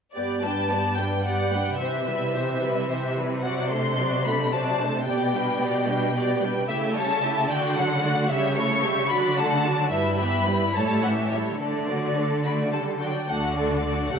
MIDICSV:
0, 0, Header, 1, 6, 480
1, 0, Start_track
1, 0, Key_signature, 1, "major"
1, 0, Tempo, 547945
1, 133, Time_signature, 6, 3, 24, 8
1, 3972, Tempo, 539084
1, 5892, Key_signature, 2, "major"
1, 8772, Tempo, 560224
1, 12426, End_track
2, 0, Start_track
2, 0, Title_t, "Violin section"
2, 0, Program_c, 0, 48
2, 127, Note_on_c, 0, 74, 44
2, 356, Note_off_c, 0, 74, 0
2, 381, Note_on_c, 0, 81, 50
2, 855, Note_on_c, 0, 79, 41
2, 865, Note_off_c, 0, 81, 0
2, 1099, Note_off_c, 0, 79, 0
2, 1101, Note_on_c, 0, 78, 49
2, 1568, Note_on_c, 0, 76, 46
2, 1569, Note_off_c, 0, 78, 0
2, 2746, Note_off_c, 0, 76, 0
2, 3010, Note_on_c, 0, 78, 44
2, 3237, Note_off_c, 0, 78, 0
2, 3250, Note_on_c, 0, 84, 50
2, 3721, Note_off_c, 0, 84, 0
2, 3735, Note_on_c, 0, 83, 50
2, 3973, Note_off_c, 0, 83, 0
2, 3977, Note_on_c, 0, 81, 54
2, 4450, Note_on_c, 0, 79, 48
2, 4456, Note_off_c, 0, 81, 0
2, 5628, Note_off_c, 0, 79, 0
2, 5889, Note_on_c, 0, 76, 50
2, 5960, Note_off_c, 0, 76, 0
2, 6129, Note_on_c, 0, 81, 58
2, 6599, Note_off_c, 0, 81, 0
2, 6611, Note_on_c, 0, 79, 53
2, 6850, Note_off_c, 0, 79, 0
2, 6851, Note_on_c, 0, 78, 61
2, 7329, Note_on_c, 0, 76, 55
2, 7330, Note_off_c, 0, 78, 0
2, 7562, Note_on_c, 0, 85, 64
2, 7570, Note_off_c, 0, 76, 0
2, 8039, Note_off_c, 0, 85, 0
2, 8042, Note_on_c, 0, 83, 58
2, 8287, Note_off_c, 0, 83, 0
2, 8288, Note_on_c, 0, 81, 62
2, 8768, Note_on_c, 0, 76, 52
2, 8771, Note_off_c, 0, 81, 0
2, 9001, Note_off_c, 0, 76, 0
2, 9009, Note_on_c, 0, 83, 58
2, 9475, Note_off_c, 0, 83, 0
2, 9481, Note_on_c, 0, 81, 51
2, 9718, Note_on_c, 0, 78, 45
2, 9721, Note_off_c, 0, 81, 0
2, 9787, Note_off_c, 0, 78, 0
2, 9964, Note_on_c, 0, 76, 35
2, 10033, Note_off_c, 0, 76, 0
2, 10202, Note_on_c, 0, 74, 41
2, 10921, Note_off_c, 0, 74, 0
2, 10936, Note_on_c, 0, 83, 45
2, 11005, Note_off_c, 0, 83, 0
2, 11175, Note_on_c, 0, 81, 36
2, 11244, Note_off_c, 0, 81, 0
2, 11421, Note_on_c, 0, 79, 43
2, 11657, Note_off_c, 0, 79, 0
2, 11661, Note_on_c, 0, 78, 50
2, 11898, Note_on_c, 0, 74, 50
2, 11899, Note_off_c, 0, 78, 0
2, 12364, Note_off_c, 0, 74, 0
2, 12374, Note_on_c, 0, 78, 47
2, 12426, Note_off_c, 0, 78, 0
2, 12426, End_track
3, 0, Start_track
3, 0, Title_t, "Violin section"
3, 0, Program_c, 1, 48
3, 141, Note_on_c, 1, 74, 29
3, 145, Note_off_c, 1, 74, 0
3, 145, Note_on_c, 1, 74, 32
3, 366, Note_off_c, 1, 74, 0
3, 377, Note_on_c, 1, 71, 32
3, 379, Note_on_c, 1, 79, 29
3, 622, Note_off_c, 1, 71, 0
3, 622, Note_off_c, 1, 79, 0
3, 631, Note_on_c, 1, 74, 29
3, 632, Note_off_c, 1, 74, 0
3, 632, Note_on_c, 1, 74, 30
3, 867, Note_on_c, 1, 71, 31
3, 868, Note_on_c, 1, 79, 30
3, 869, Note_off_c, 1, 74, 0
3, 1097, Note_on_c, 1, 74, 29
3, 1101, Note_off_c, 1, 74, 0
3, 1101, Note_on_c, 1, 74, 31
3, 1105, Note_off_c, 1, 71, 0
3, 1105, Note_off_c, 1, 79, 0
3, 1323, Note_off_c, 1, 74, 0
3, 1344, Note_on_c, 1, 79, 26
3, 1345, Note_on_c, 1, 71, 29
3, 1578, Note_on_c, 1, 72, 33
3, 1581, Note_off_c, 1, 71, 0
3, 1581, Note_off_c, 1, 79, 0
3, 1586, Note_off_c, 1, 72, 0
3, 1586, Note_on_c, 1, 72, 30
3, 1805, Note_off_c, 1, 72, 0
3, 1815, Note_on_c, 1, 71, 27
3, 1820, Note_off_c, 1, 71, 0
3, 1820, Note_on_c, 1, 71, 29
3, 2054, Note_on_c, 1, 72, 32
3, 2058, Note_off_c, 1, 72, 0
3, 2058, Note_on_c, 1, 72, 31
3, 2059, Note_off_c, 1, 71, 0
3, 2294, Note_on_c, 1, 71, 30
3, 2298, Note_off_c, 1, 71, 0
3, 2298, Note_off_c, 1, 72, 0
3, 2298, Note_on_c, 1, 71, 32
3, 2523, Note_on_c, 1, 72, 32
3, 2537, Note_off_c, 1, 71, 0
3, 2752, Note_off_c, 1, 72, 0
3, 2775, Note_on_c, 1, 71, 30
3, 2776, Note_off_c, 1, 71, 0
3, 2776, Note_on_c, 1, 71, 27
3, 3017, Note_off_c, 1, 71, 0
3, 3019, Note_on_c, 1, 72, 33
3, 3024, Note_on_c, 1, 74, 30
3, 3241, Note_off_c, 1, 72, 0
3, 3244, Note_off_c, 1, 74, 0
3, 3251, Note_on_c, 1, 69, 29
3, 3253, Note_on_c, 1, 72, 31
3, 3485, Note_off_c, 1, 72, 0
3, 3493, Note_off_c, 1, 69, 0
3, 3495, Note_on_c, 1, 72, 32
3, 3496, Note_on_c, 1, 74, 30
3, 3716, Note_off_c, 1, 72, 0
3, 3724, Note_on_c, 1, 69, 32
3, 3726, Note_on_c, 1, 72, 35
3, 3734, Note_off_c, 1, 74, 0
3, 3964, Note_off_c, 1, 72, 0
3, 3968, Note_off_c, 1, 69, 0
3, 3973, Note_on_c, 1, 74, 34
3, 3974, Note_on_c, 1, 72, 34
3, 4197, Note_off_c, 1, 74, 0
3, 4198, Note_off_c, 1, 72, 0
3, 4220, Note_on_c, 1, 69, 30
3, 4220, Note_on_c, 1, 72, 30
3, 4457, Note_off_c, 1, 69, 0
3, 4457, Note_off_c, 1, 72, 0
3, 4471, Note_on_c, 1, 74, 35
3, 4473, Note_off_c, 1, 74, 0
3, 4473, Note_on_c, 1, 74, 35
3, 4687, Note_off_c, 1, 74, 0
3, 4703, Note_on_c, 1, 71, 38
3, 4704, Note_on_c, 1, 79, 33
3, 4938, Note_off_c, 1, 71, 0
3, 4939, Note_off_c, 1, 79, 0
3, 4945, Note_on_c, 1, 74, 35
3, 4947, Note_off_c, 1, 74, 0
3, 4947, Note_on_c, 1, 74, 37
3, 5181, Note_off_c, 1, 74, 0
3, 5184, Note_on_c, 1, 71, 37
3, 5185, Note_on_c, 1, 79, 37
3, 5419, Note_off_c, 1, 71, 0
3, 5419, Note_off_c, 1, 79, 0
3, 5427, Note_on_c, 1, 74, 36
3, 5428, Note_off_c, 1, 74, 0
3, 5428, Note_on_c, 1, 74, 37
3, 5644, Note_off_c, 1, 74, 0
3, 5663, Note_on_c, 1, 71, 34
3, 5666, Note_on_c, 1, 79, 33
3, 5894, Note_on_c, 1, 76, 40
3, 5896, Note_on_c, 1, 67, 38
3, 5897, Note_off_c, 1, 71, 0
3, 5899, Note_off_c, 1, 79, 0
3, 6115, Note_off_c, 1, 76, 0
3, 6116, Note_off_c, 1, 67, 0
3, 6125, Note_on_c, 1, 69, 34
3, 6126, Note_on_c, 1, 73, 40
3, 6358, Note_on_c, 1, 67, 37
3, 6363, Note_on_c, 1, 76, 38
3, 6367, Note_off_c, 1, 69, 0
3, 6367, Note_off_c, 1, 73, 0
3, 6604, Note_off_c, 1, 67, 0
3, 6604, Note_on_c, 1, 74, 38
3, 6606, Note_off_c, 1, 76, 0
3, 6609, Note_on_c, 1, 66, 40
3, 6830, Note_off_c, 1, 74, 0
3, 6832, Note_off_c, 1, 66, 0
3, 6855, Note_on_c, 1, 69, 39
3, 6856, Note_on_c, 1, 78, 40
3, 7079, Note_on_c, 1, 74, 35
3, 7081, Note_on_c, 1, 66, 35
3, 7092, Note_off_c, 1, 69, 0
3, 7093, Note_off_c, 1, 78, 0
3, 7324, Note_off_c, 1, 74, 0
3, 7325, Note_off_c, 1, 66, 0
3, 7325, Note_on_c, 1, 73, 35
3, 7327, Note_on_c, 1, 76, 37
3, 7551, Note_off_c, 1, 73, 0
3, 7552, Note_off_c, 1, 76, 0
3, 7566, Note_on_c, 1, 73, 38
3, 7568, Note_on_c, 1, 69, 40
3, 7799, Note_off_c, 1, 73, 0
3, 7810, Note_off_c, 1, 69, 0
3, 7810, Note_on_c, 1, 73, 41
3, 7814, Note_on_c, 1, 76, 39
3, 8047, Note_on_c, 1, 74, 38
3, 8049, Note_on_c, 1, 66, 39
3, 8052, Note_off_c, 1, 73, 0
3, 8054, Note_off_c, 1, 76, 0
3, 8273, Note_off_c, 1, 74, 0
3, 8274, Note_off_c, 1, 66, 0
3, 8296, Note_on_c, 1, 69, 39
3, 8297, Note_on_c, 1, 78, 41
3, 8523, Note_on_c, 1, 74, 34
3, 8526, Note_on_c, 1, 66, 35
3, 8534, Note_off_c, 1, 69, 0
3, 8534, Note_off_c, 1, 78, 0
3, 8769, Note_off_c, 1, 74, 0
3, 8769, Note_on_c, 1, 64, 36
3, 8770, Note_off_c, 1, 66, 0
3, 8773, Note_on_c, 1, 71, 37
3, 8990, Note_off_c, 1, 64, 0
3, 8992, Note_off_c, 1, 71, 0
3, 8997, Note_on_c, 1, 67, 37
3, 8997, Note_on_c, 1, 76, 37
3, 9240, Note_off_c, 1, 76, 0
3, 9241, Note_off_c, 1, 67, 0
3, 9242, Note_on_c, 1, 64, 33
3, 9243, Note_on_c, 1, 71, 33
3, 9482, Note_off_c, 1, 64, 0
3, 9482, Note_on_c, 1, 69, 33
3, 9483, Note_off_c, 1, 71, 0
3, 9483, Note_on_c, 1, 73, 35
3, 9705, Note_off_c, 1, 69, 0
3, 9706, Note_off_c, 1, 73, 0
3, 9726, Note_on_c, 1, 76, 34
3, 9729, Note_on_c, 1, 67, 34
3, 9966, Note_off_c, 1, 76, 0
3, 9967, Note_off_c, 1, 67, 0
3, 9970, Note_on_c, 1, 73, 30
3, 9971, Note_on_c, 1, 69, 29
3, 10199, Note_off_c, 1, 69, 0
3, 10210, Note_on_c, 1, 69, 29
3, 10212, Note_off_c, 1, 73, 0
3, 10438, Note_off_c, 1, 69, 0
3, 10459, Note_on_c, 1, 74, 29
3, 10460, Note_on_c, 1, 66, 30
3, 10700, Note_off_c, 1, 66, 0
3, 10700, Note_off_c, 1, 74, 0
3, 10700, Note_on_c, 1, 69, 30
3, 10940, Note_off_c, 1, 69, 0
3, 10942, Note_on_c, 1, 66, 33
3, 10946, Note_on_c, 1, 74, 31
3, 11179, Note_on_c, 1, 69, 32
3, 11182, Note_off_c, 1, 66, 0
3, 11182, Note_off_c, 1, 69, 0
3, 11182, Note_on_c, 1, 69, 32
3, 11185, Note_off_c, 1, 74, 0
3, 11407, Note_off_c, 1, 69, 0
3, 11428, Note_on_c, 1, 74, 27
3, 11431, Note_on_c, 1, 66, 26
3, 11655, Note_off_c, 1, 66, 0
3, 11665, Note_off_c, 1, 74, 0
3, 11666, Note_on_c, 1, 66, 35
3, 11668, Note_on_c, 1, 69, 37
3, 11891, Note_off_c, 1, 66, 0
3, 11895, Note_off_c, 1, 69, 0
3, 11901, Note_on_c, 1, 66, 35
3, 11905, Note_on_c, 1, 69, 33
3, 12134, Note_off_c, 1, 66, 0
3, 12136, Note_off_c, 1, 69, 0
3, 12150, Note_on_c, 1, 66, 35
3, 12154, Note_on_c, 1, 69, 34
3, 12367, Note_off_c, 1, 69, 0
3, 12376, Note_off_c, 1, 66, 0
3, 12377, Note_on_c, 1, 69, 35
3, 12380, Note_off_c, 1, 69, 0
3, 12380, Note_on_c, 1, 69, 34
3, 12426, Note_off_c, 1, 69, 0
3, 12426, End_track
4, 0, Start_track
4, 0, Title_t, "Viola section"
4, 0, Program_c, 2, 48
4, 134, Note_on_c, 2, 59, 32
4, 134, Note_on_c, 2, 67, 35
4, 360, Note_off_c, 2, 59, 0
4, 360, Note_off_c, 2, 67, 0
4, 379, Note_on_c, 2, 55, 30
4, 379, Note_on_c, 2, 62, 30
4, 619, Note_on_c, 2, 59, 29
4, 620, Note_on_c, 2, 67, 28
4, 622, Note_off_c, 2, 55, 0
4, 622, Note_off_c, 2, 62, 0
4, 862, Note_off_c, 2, 59, 0
4, 863, Note_off_c, 2, 67, 0
4, 867, Note_on_c, 2, 55, 30
4, 867, Note_on_c, 2, 62, 29
4, 1105, Note_off_c, 2, 55, 0
4, 1105, Note_off_c, 2, 62, 0
4, 1110, Note_on_c, 2, 59, 31
4, 1111, Note_on_c, 2, 67, 31
4, 1328, Note_off_c, 2, 59, 0
4, 1329, Note_off_c, 2, 67, 0
4, 1341, Note_on_c, 2, 55, 28
4, 1345, Note_on_c, 2, 62, 27
4, 1579, Note_off_c, 2, 55, 0
4, 1581, Note_off_c, 2, 62, 0
4, 1585, Note_on_c, 2, 52, 32
4, 1587, Note_on_c, 2, 67, 34
4, 1805, Note_off_c, 2, 52, 0
4, 1806, Note_off_c, 2, 67, 0
4, 1823, Note_on_c, 2, 55, 31
4, 1824, Note_on_c, 2, 64, 31
4, 2060, Note_off_c, 2, 55, 0
4, 2061, Note_off_c, 2, 64, 0
4, 2065, Note_on_c, 2, 52, 28
4, 2065, Note_on_c, 2, 67, 28
4, 2297, Note_on_c, 2, 55, 31
4, 2299, Note_on_c, 2, 64, 30
4, 2301, Note_off_c, 2, 52, 0
4, 2301, Note_off_c, 2, 67, 0
4, 2537, Note_off_c, 2, 55, 0
4, 2537, Note_on_c, 2, 67, 30
4, 2538, Note_off_c, 2, 64, 0
4, 2539, Note_on_c, 2, 52, 30
4, 2760, Note_off_c, 2, 52, 0
4, 2760, Note_off_c, 2, 67, 0
4, 2776, Note_on_c, 2, 64, 32
4, 2777, Note_on_c, 2, 55, 31
4, 3016, Note_on_c, 2, 54, 34
4, 3017, Note_off_c, 2, 64, 0
4, 3018, Note_off_c, 2, 55, 0
4, 3018, Note_on_c, 2, 66, 32
4, 3240, Note_off_c, 2, 54, 0
4, 3241, Note_off_c, 2, 66, 0
4, 3259, Note_on_c, 2, 57, 31
4, 3260, Note_on_c, 2, 62, 33
4, 3496, Note_on_c, 2, 54, 31
4, 3497, Note_off_c, 2, 57, 0
4, 3497, Note_off_c, 2, 62, 0
4, 3500, Note_on_c, 2, 66, 30
4, 3734, Note_off_c, 2, 54, 0
4, 3736, Note_off_c, 2, 66, 0
4, 3739, Note_on_c, 2, 57, 34
4, 3742, Note_on_c, 2, 62, 30
4, 3975, Note_off_c, 2, 57, 0
4, 3977, Note_off_c, 2, 62, 0
4, 3979, Note_on_c, 2, 54, 33
4, 3981, Note_on_c, 2, 66, 34
4, 4201, Note_off_c, 2, 54, 0
4, 4201, Note_off_c, 2, 66, 0
4, 4213, Note_on_c, 2, 57, 30
4, 4213, Note_on_c, 2, 62, 31
4, 4453, Note_off_c, 2, 57, 0
4, 4453, Note_off_c, 2, 62, 0
4, 4453, Note_on_c, 2, 59, 37
4, 4454, Note_on_c, 2, 67, 39
4, 4676, Note_off_c, 2, 59, 0
4, 4677, Note_off_c, 2, 67, 0
4, 4691, Note_on_c, 2, 55, 34
4, 4694, Note_on_c, 2, 62, 33
4, 4931, Note_on_c, 2, 59, 34
4, 4933, Note_off_c, 2, 55, 0
4, 4934, Note_off_c, 2, 62, 0
4, 4935, Note_on_c, 2, 67, 35
4, 5173, Note_off_c, 2, 59, 0
4, 5175, Note_off_c, 2, 67, 0
4, 5175, Note_on_c, 2, 62, 33
4, 5176, Note_on_c, 2, 55, 35
4, 5414, Note_off_c, 2, 62, 0
4, 5415, Note_off_c, 2, 55, 0
4, 5425, Note_on_c, 2, 59, 35
4, 5425, Note_on_c, 2, 67, 38
4, 5643, Note_off_c, 2, 59, 0
4, 5643, Note_off_c, 2, 67, 0
4, 5658, Note_on_c, 2, 62, 34
4, 5659, Note_on_c, 2, 55, 32
4, 5895, Note_off_c, 2, 55, 0
4, 5895, Note_off_c, 2, 62, 0
4, 5902, Note_on_c, 2, 64, 42
4, 5903, Note_on_c, 2, 57, 43
4, 6119, Note_off_c, 2, 64, 0
4, 6120, Note_off_c, 2, 57, 0
4, 6128, Note_on_c, 2, 61, 36
4, 6132, Note_on_c, 2, 55, 38
4, 6368, Note_off_c, 2, 61, 0
4, 6370, Note_off_c, 2, 55, 0
4, 6374, Note_on_c, 2, 57, 37
4, 6377, Note_on_c, 2, 64, 37
4, 6596, Note_off_c, 2, 57, 0
4, 6607, Note_on_c, 2, 57, 37
4, 6608, Note_on_c, 2, 66, 36
4, 6613, Note_off_c, 2, 64, 0
4, 6831, Note_off_c, 2, 57, 0
4, 6832, Note_off_c, 2, 66, 0
4, 6850, Note_on_c, 2, 54, 38
4, 6851, Note_on_c, 2, 62, 39
4, 7090, Note_off_c, 2, 54, 0
4, 7090, Note_off_c, 2, 62, 0
4, 7093, Note_on_c, 2, 57, 35
4, 7094, Note_on_c, 2, 66, 36
4, 7330, Note_on_c, 2, 55, 45
4, 7331, Note_off_c, 2, 57, 0
4, 7331, Note_off_c, 2, 66, 0
4, 7333, Note_on_c, 2, 67, 46
4, 7553, Note_off_c, 2, 55, 0
4, 7555, Note_off_c, 2, 67, 0
4, 7575, Note_on_c, 2, 57, 40
4, 7577, Note_on_c, 2, 64, 40
4, 7812, Note_on_c, 2, 67, 35
4, 7813, Note_off_c, 2, 57, 0
4, 7814, Note_off_c, 2, 64, 0
4, 7814, Note_on_c, 2, 55, 35
4, 8049, Note_on_c, 2, 66, 39
4, 8052, Note_on_c, 2, 54, 35
4, 8053, Note_off_c, 2, 67, 0
4, 8054, Note_off_c, 2, 55, 0
4, 8274, Note_off_c, 2, 66, 0
4, 8276, Note_off_c, 2, 54, 0
4, 8292, Note_on_c, 2, 62, 38
4, 8296, Note_on_c, 2, 57, 38
4, 8532, Note_off_c, 2, 62, 0
4, 8534, Note_off_c, 2, 57, 0
4, 8536, Note_on_c, 2, 66, 34
4, 8537, Note_on_c, 2, 54, 36
4, 8775, Note_off_c, 2, 66, 0
4, 8775, Note_on_c, 2, 55, 42
4, 8775, Note_on_c, 2, 64, 41
4, 8776, Note_off_c, 2, 54, 0
4, 8993, Note_off_c, 2, 55, 0
4, 8993, Note_off_c, 2, 64, 0
4, 9013, Note_on_c, 2, 52, 37
4, 9013, Note_on_c, 2, 59, 40
4, 9248, Note_off_c, 2, 52, 0
4, 9248, Note_off_c, 2, 59, 0
4, 9251, Note_on_c, 2, 55, 36
4, 9252, Note_on_c, 2, 64, 34
4, 9480, Note_off_c, 2, 64, 0
4, 9482, Note_off_c, 2, 55, 0
4, 9490, Note_on_c, 2, 64, 32
4, 9492, Note_on_c, 2, 55, 33
4, 9710, Note_off_c, 2, 64, 0
4, 9711, Note_off_c, 2, 55, 0
4, 9721, Note_on_c, 2, 52, 34
4, 9722, Note_on_c, 2, 61, 34
4, 9963, Note_off_c, 2, 52, 0
4, 9964, Note_off_c, 2, 61, 0
4, 9968, Note_on_c, 2, 64, 30
4, 9970, Note_on_c, 2, 55, 30
4, 10209, Note_on_c, 2, 57, 36
4, 10211, Note_off_c, 2, 64, 0
4, 10212, Note_off_c, 2, 55, 0
4, 10212, Note_on_c, 2, 62, 35
4, 10437, Note_off_c, 2, 57, 0
4, 10439, Note_off_c, 2, 62, 0
4, 10456, Note_on_c, 2, 54, 31
4, 10459, Note_on_c, 2, 57, 31
4, 10694, Note_off_c, 2, 57, 0
4, 10698, Note_off_c, 2, 54, 0
4, 10703, Note_on_c, 2, 62, 30
4, 10705, Note_on_c, 2, 57, 29
4, 10928, Note_off_c, 2, 57, 0
4, 10939, Note_on_c, 2, 57, 42
4, 10942, Note_off_c, 2, 62, 0
4, 11164, Note_off_c, 2, 57, 0
4, 11179, Note_on_c, 2, 55, 40
4, 11420, Note_on_c, 2, 54, 30
4, 11422, Note_off_c, 2, 55, 0
4, 11656, Note_off_c, 2, 54, 0
4, 11661, Note_on_c, 2, 57, 35
4, 11662, Note_on_c, 2, 62, 39
4, 11888, Note_off_c, 2, 57, 0
4, 11888, Note_off_c, 2, 62, 0
4, 11898, Note_on_c, 2, 62, 33
4, 11899, Note_on_c, 2, 57, 37
4, 12129, Note_off_c, 2, 57, 0
4, 12130, Note_off_c, 2, 62, 0
4, 12139, Note_on_c, 2, 57, 32
4, 12141, Note_on_c, 2, 62, 33
4, 12366, Note_off_c, 2, 57, 0
4, 12371, Note_off_c, 2, 62, 0
4, 12376, Note_on_c, 2, 57, 37
4, 12376, Note_on_c, 2, 67, 31
4, 12426, Note_off_c, 2, 57, 0
4, 12426, Note_off_c, 2, 67, 0
4, 12426, End_track
5, 0, Start_track
5, 0, Title_t, "Cello section"
5, 0, Program_c, 3, 48
5, 139, Note_on_c, 3, 43, 40
5, 1547, Note_off_c, 3, 43, 0
5, 1580, Note_on_c, 3, 48, 42
5, 4454, Note_off_c, 3, 48, 0
5, 4456, Note_on_c, 3, 47, 46
5, 5894, Note_off_c, 3, 47, 0
5, 5896, Note_on_c, 3, 49, 46
5, 6597, Note_off_c, 3, 49, 0
5, 6609, Note_on_c, 3, 50, 48
5, 7329, Note_off_c, 3, 50, 0
5, 7329, Note_on_c, 3, 49, 48
5, 8037, Note_off_c, 3, 49, 0
5, 8051, Note_on_c, 3, 50, 46
5, 8773, Note_off_c, 3, 50, 0
5, 8776, Note_on_c, 3, 43, 46
5, 9471, Note_off_c, 3, 43, 0
5, 9486, Note_on_c, 3, 45, 44
5, 10210, Note_off_c, 3, 45, 0
5, 10211, Note_on_c, 3, 50, 43
5, 11464, Note_off_c, 3, 50, 0
5, 11664, Note_on_c, 3, 50, 45
5, 12292, Note_off_c, 3, 50, 0
5, 12374, Note_on_c, 3, 49, 39
5, 12426, Note_off_c, 3, 49, 0
5, 12426, End_track
6, 0, Start_track
6, 0, Title_t, "Double bass section"
6, 0, Program_c, 4, 48
6, 11668, Note_on_c, 4, 38, 41
6, 12294, Note_off_c, 4, 38, 0
6, 12372, Note_on_c, 4, 37, 39
6, 12426, Note_off_c, 4, 37, 0
6, 12426, End_track
0, 0, End_of_file